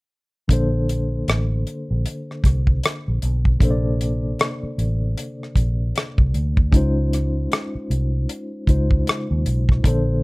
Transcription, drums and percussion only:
0.49 kick, closed hi-hat
0.89 closed hi-hat
1.28 cross-stick, closed hi-hat
1.67 closed hi-hat
2.06 closed hi-hat
2.31 cross-stick
2.44 kick, cross-stick, closed hi-hat
2.67 kick
2.83 cross-stick, closed hi-hat
3.22 closed hi-hat
3.45 kick
3.60 kick, closed hi-hat
4.01 closed hi-hat
4.39 cross-stick, closed hi-hat
4.79 closed hi-hat
5.18 closed hi-hat
5.43 cross-stick
5.56 kick, closed hi-hat
5.96 cross-stick, closed hi-hat
6.18 kick
6.34 closed hi-hat
6.57 kick
6.72 kick, closed hi-hat
7.13 cross-stick, closed hi-hat
7.52 cross-stick, closed hi-hat
7.91 closed hi-hat
8.29 closed hi-hat
8.67 kick, closed hi-hat
8.91 kick
9.07 cross-stick, closed hi-hat
9.46 closed hi-hat
9.69 kick, cross-stick
9.84 kick, closed hi-hat

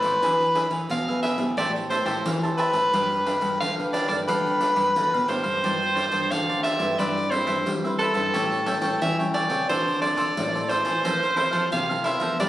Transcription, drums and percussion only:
0.03 pandeiro
0.23 pandeiro
0.41 pandeiro
0.55 pandeiro
0.71 pandeiro
0.90 pandeiro
1.09 pandeiro
1.23 pandeiro
1.38 pandeiro
1.58 pandeiro
1.76 pandeiro
1.90 pandeiro
2.06 pandeiro
2.26 pandeiro
2.44 pandeiro
2.58 pandeiro
2.73 pandeiro
2.93 pandeiro
3.12 pandeiro
3.26 pandeiro
3.42 pandeiro
3.61 pandeiro
3.79 pandeiro
3.94 pandeiro
4.09 pandeiro
4.28 pandeiro
4.46 pandeiro
4.61 pandeiro
4.76 pandeiro
4.96 pandeiro
5.14 pandeiro
5.29 pandeiro
5.44 pandeiro
5.64 pandeiro
5.82 pandeiro
5.97 pandeiro
6.12 pandeiro
6.31 pandeiro
6.50 pandeiro
6.64 pandeiro
6.80 pandeiro
6.99 pandeiro
7.17 pandeiro
7.32 pandeiro
7.47 pandeiro
7.67 pandeiro
7.85 pandeiro
7.99 pandeiro
8.15 pandeiro
8.34 pandeiro
8.52 pandeiro
8.66 pandeiro
8.82 pandeiro
9.01 pandeiro
9.20 pandeiro
9.34 pandeiro
9.50 pandeiro
9.69 pandeiro
9.88 pandeiro
10.02 pandeiro
10.17 pandeiro
10.37 pandeiro
10.55 pandeiro
10.70 pandeiro
10.85 pandeiro
11.05 pandeiro
11.23 pandeiro
11.37 pandeiro
11.53 pandeiro
11.72 pandeiro
11.90 pandeiro
12.04 pandeiro
12.20 pandeiro
12.40 pandeiro

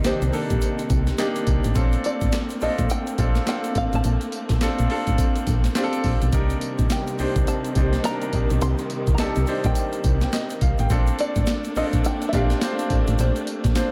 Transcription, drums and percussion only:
0.04 snare, clap, closed hi-hat, tambourine, shaker
0.22 closed hi-hat, shaker
0.33 open hi-hat, shaker
0.50 kick, closed hi-hat, shaker
0.61 closed hi-hat, tambourine, shaker
0.79 closed hi-hat, shaker
0.90 kick, closed hi-hat, tambourine, shaker
1.07 snare, closed hi-hat, shaker
1.18 snare, clap, closed hi-hat, tambourine, shaker
1.36 closed hi-hat, shaker
1.47 kick, closed hi-hat, tambourine
1.64 closed hi-hat, shaker
1.75 kick, closed hi-hat, tambourine, shaker
1.92 closed hi-hat, shaker
2.04 closed hi-hat, tambourine
2.21 kick, closed hi-hat, shaker
2.32 snare, clap, closed hi-hat, tambourine, shaker
2.50 closed hi-hat, shaker
2.61 open hi-hat, shaker
2.78 kick, closed hi-hat, shaker
2.89 closed hi-hat, tambourine, shaker
3.07 closed hi-hat, shaker
3.18 kick, closed hi-hat, tambourine, shaker
3.35 snare, closed hi-hat, shaker
3.47 snare, clap, closed hi-hat, tambourine, shaker
3.64 closed hi-hat, shaker
3.75 kick, closed hi-hat, tambourine
3.93 closed hi-hat, shaker
4.04 closed hi-hat, tambourine, shaker
4.21 closed hi-hat, shaker
4.32 closed hi-hat, tambourine
4.49 kick, snare, closed hi-hat, shaker
4.61 snare, clap, closed hi-hat, tambourine, shaker
4.79 closed hi-hat, shaker
4.90 open hi-hat
5.07 kick, closed hi-hat, shaker
5.18 kick, closed hi-hat, tambourine, shaker
5.36 closed hi-hat, shaker
5.47 kick, closed hi-hat, tambourine, shaker
5.64 snare, closed hi-hat, shaker
5.75 snare, clap, closed hi-hat, tambourine, shaker
5.93 closed hi-hat, shaker
6.04 kick, open hi-hat, tambourine
6.22 closed hi-hat, shaker
6.33 kick, closed hi-hat, tambourine, shaker
6.50 closed hi-hat, shaker
6.61 closed hi-hat, tambourine
6.79 kick, closed hi-hat, shaker
6.90 snare, clap, closed hi-hat, tambourine, shaker
7.07 closed hi-hat, shaker
7.19 open hi-hat, shaker
7.36 kick, closed hi-hat, shaker
7.47 closed hi-hat, tambourine, shaker
7.64 closed hi-hat, shaker
7.75 kick, closed hi-hat, tambourine, shaker
7.93 snare, closed hi-hat, shaker
8.04 snare, clap, closed hi-hat, tambourine, shaker
8.22 closed hi-hat, shaker
8.33 kick, closed hi-hat, tambourine
8.50 closed hi-hat, shaker
8.61 closed hi-hat, tambourine, shaker
8.78 closed hi-hat, shaker
8.90 closed hi-hat, tambourine
9.07 kick, closed hi-hat, shaker
9.18 snare, clap, closed hi-hat, tambourine, shaker
9.36 closed hi-hat, shaker
9.47 open hi-hat, shaker
9.64 kick, closed hi-hat, shaker
9.75 closed hi-hat, tambourine, shaker
9.93 closed hi-hat, shaker
10.04 kick, closed hi-hat, tambourine, shaker
10.21 snare, closed hi-hat, shaker
10.33 snare, clap, closed hi-hat, tambourine, shaker
10.50 closed hi-hat, shaker
10.61 kick, closed hi-hat, tambourine
10.78 closed hi-hat, shaker
10.90 kick, closed hi-hat, tambourine, shaker
11.07 closed hi-hat, shaker
11.19 closed hi-hat, tambourine
11.36 kick, closed hi-hat, shaker
11.46 snare, clap, closed hi-hat, tambourine, shaker
11.64 closed hi-hat, shaker
11.75 open hi-hat, shaker
11.93 kick, closed hi-hat, shaker
12.04 closed hi-hat, tambourine, shaker
12.22 closed hi-hat, shaker
12.33 kick, closed hi-hat, tambourine, shaker
12.50 snare, closed hi-hat, shaker
12.61 snare, clap, closed hi-hat, tambourine, shaker
12.79 closed hi-hat, shaker
12.90 kick, closed hi-hat, tambourine
13.07 closed hi-hat, shaker
13.19 closed hi-hat, tambourine, shaker
13.36 closed hi-hat, shaker
13.47 closed hi-hat, tambourine
13.64 kick, snare, closed hi-hat, shaker
13.75 snare, clap, closed hi-hat, tambourine, shaker

